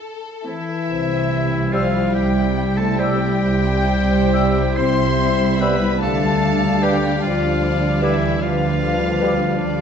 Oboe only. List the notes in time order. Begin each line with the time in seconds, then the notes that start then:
0.45 E4
1.73 F4
2.15 G4
2.77 A4
2.99 G4
4.77 C5
5.61 B4
6.02 A4
6.83 G4
7.22 F4
8.04 E4
8.42 F4